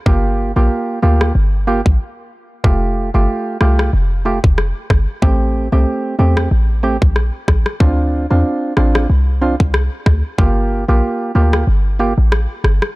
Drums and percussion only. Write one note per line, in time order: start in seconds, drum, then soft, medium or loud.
0.06 kick loud
1.21 cross-stick medium
1.86 kick loud
2.64 kick loud
3.61 cross-stick medium
3.79 cross-stick loud
4.44 kick loud
4.58 cross-stick medium
4.90 kick medium
4.90 cross-stick medium
5.22 kick loud
6.37 cross-stick loud
7.02 kick loud
7.16 cross-stick medium
7.48 kick medium
7.48 cross-stick medium
7.66 cross-stick medium
7.80 kick loud
8.77 cross-stick medium
8.95 cross-stick loud
9.60 kick medium
9.74 cross-stick loud
10.06 kick medium
10.06 cross-stick medium
10.38 kick loud
11.53 cross-stick loud
12.32 cross-stick loud
12.64 cross-stick medium
12.82 cross-stick medium